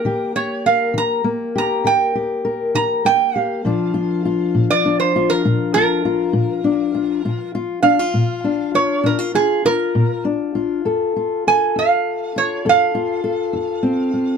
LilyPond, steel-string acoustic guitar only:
\new Staff \with { instrumentName = "Steel-string acoustic guitar" } { \time 12/8 \key bes \major \tempo 4. = 67 << { <bes g'>8 g'8 bes'4 bes8 g'8 bes'8 g'8 bes'4 bes8 g'8 | <f d' f'>8 f'8 f'4 d'8 f'8 f'8 f'8 f'4 d'8 f'8 | f'8 f'8 d'16 f'8. d'8 f'8 d'16 f'16 f'8 f'4 d'8 f'8 | a'8 f'8 a'4. f'8 a'8 f'8 a'4 c'8 f'8 | } \\ { ees4 r8 ees4 r8 ees4 r8 ees4 r8 | bes,4 r8 bes,4 r8 bes,4 r8 bes,4 r8 | bes,4 r8 bes,4 r8 bes,4 r8 bes,4 r8 | f,4 r8 f,4 r8 f,4 r8 f,4 r8 | } >> }